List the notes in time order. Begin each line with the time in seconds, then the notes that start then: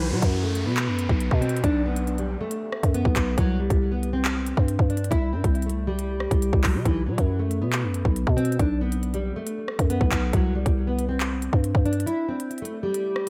Already playing: B1, downlifter
0.11 B2 F#3
0.22 F#2, kick, closed hi-hat
0.44 A3
0.55 closed hi-hat
0.66 B2 B3
0.77 clap
0.88 F#2
0.99 closed hi-hat
1.09 B1, kick
1.20 closed hi-hat
1.31 B2, kick
1.41 C4, closed hi-hat
1.49 closed hi-hat
1.57 closed hi-hat
1.64 B1 D4, kick, closed hi-hat
1.86 B3
1.96 closed hi-hat
2.07 closed hi-hat
2.18 G3, closed hi-hat
2.41 A3
2.51 closed hi-hat
2.72 cross-stick
2.83 F#2, kick, closed hi-hat
2.94 B3, closed hi-hat
3.05 B1, kick
3.16 B1, kick, clap, closed hi-hat
3.38 C2 F#3, kick, closed hi-hat
3.60 G3
3.70 C2, kick, closed hi-hat
3.92 B3
4.03 closed hi-hat
4.13 C4
4.25 clap
4.46 closed hi-hat
4.57 G2, kick
4.68 closed hi-hat
4.79 G2, kick
4.90 D4, closed hi-hat
4.97 closed hi-hat
5.04 closed hi-hat
5.11 C2 E4, kick, closed hi-hat
5.33 G2 C4
5.44 C2, kick, closed hi-hat
5.55 closed hi-hat
5.62 A3, closed hi-hat
5.70 closed hi-hat
5.87 G3
5.99 closed hi-hat
6.20 cross-stick
6.31 C2, kick, closed hi-hat
6.42 closed hi-hat
6.53 C2, kick
6.64 F#3, kick, clap, open hi-hat
6.75 C3
6.85 B1 E3, kick, closed hi-hat
7.06 B2 F#3
7.18 F#2, kick, closed hi-hat
7.39 A3
7.51 closed hi-hat
7.62 B2 B3
7.73 clap
7.83 F#2
7.94 closed hi-hat
8.05 B1, kick
8.16 closed hi-hat
8.27 B2, kick
8.37 C4, closed hi-hat
8.45 closed hi-hat
8.52 closed hi-hat
8.59 B1 D4, kick, closed hi-hat
8.81 B3
8.92 closed hi-hat
9.03 closed hi-hat
9.14 G3, closed hi-hat
9.36 A3
9.47 closed hi-hat
9.68 cross-stick
9.79 F#2, kick, closed hi-hat
9.90 B3, closed hi-hat
10.01 B1, kick
10.12 B1, kick, clap, closed hi-hat
10.33 C2 F#3, kick, closed hi-hat
10.55 G3
10.66 C2, kick, closed hi-hat
10.87 B3
10.99 closed hi-hat
11.09 C4
11.20 clap
11.42 closed hi-hat
11.53 G2, kick
11.64 closed hi-hat
11.75 G2, kick
11.85 D4, closed hi-hat
11.93 closed hi-hat
12.00 closed hi-hat
12.06 E4, closed hi-hat
12.28 C4
12.40 closed hi-hat
12.51 closed hi-hat
12.58 A3, closed hi-hat
12.65 closed hi-hat
12.83 G3
12.94 closed hi-hat
13.16 cross-stick